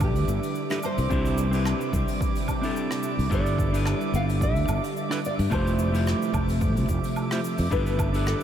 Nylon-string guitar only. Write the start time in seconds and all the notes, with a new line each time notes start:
0.04 G4
0.85 C5
3.33 D5
4.15 F5
4.43 E5
5.04 D5
5.26 D5
5.53 C5
7.72 B4
8.27 A4